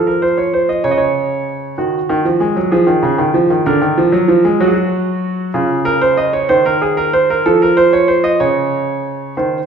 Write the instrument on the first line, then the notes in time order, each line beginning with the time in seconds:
grand piano
Already playing: F3
0.07 A#4
0.22 C5
0.38 C#5
0.54 C5
0.69 D#5
0.84 C#3 C#5
0.91 D#5
0.98 C#5
1.78 D#3 F#4
2.09 D#3
2.25 F3
2.40 G#3
2.56 F#3
2.72 F3 G#4
2.87 D#3
3.03 C#3
3.18 D#3
3.34 F3
3.50 D#3
3.66 D3 A#4
3.82 D#3
3.98 F3
4.12 F#3
4.28 F3
4.45 G#3
4.60 F#3 F#4
4.67 G#4
4.74 F#4
5.54 C#3 F4
5.85 A#4
6.01 C5
6.17 D#5
6.33 C#5
6.49 D#3 C5
6.66 A#4
6.82 G#4
6.97 A#4
7.13 C5
7.30 A#4
7.46 F3 A4
7.62 A#4
7.77 C5
7.93 C#5
8.08 C5
8.24 D#5
8.40 C#3 C#5
9.37 D#3 C5